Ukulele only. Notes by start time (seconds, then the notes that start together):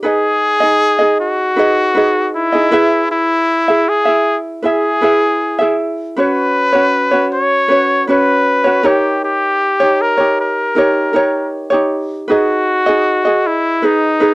0.03 D#4 G#4 B4 D#5
0.60 D#4 G#4 D#5
0.99 D#4 G#4 D#5
1.56 D#4 G#4 B4 D#5
1.95 D#4 G#4 B4 D#5
2.52 D#4 G#4 D#5
2.72 E4 G#4 B4 E5
3.68 E4 G#4 E5
4.05 E4 G#4 E5
4.63 E4 G#4 B4 E5
5.01 E4 G#4 B4 E5
5.59 E4 G#4 E5
6.16 C#4 F#4 B4 C#5
6.73 C#4 F#4 C#5
7.11 C#4 F#4 C#5
7.68 C#4 F#4 B4 C#5
8.07 C#4 F#4 B4 C#5
8.64 C#4 F#4 C#5
8.83 D#4 G4 A#4 C#5
9.80 D#4 G4 C#5
10.17 D#4 G4 C#5
10.75 D#4 G4 A#4 C#5
11.13 D#4 G4 A#4 C#5
11.70 D#4 G4 C#5
12.28 D#4 G#4 B4 D#5
12.86 D#4 G#4 D#5
13.25 G#4 D#5
13.82 D#4 G#4 B4 D#5
14.20 D#4 G#4 B4 D#5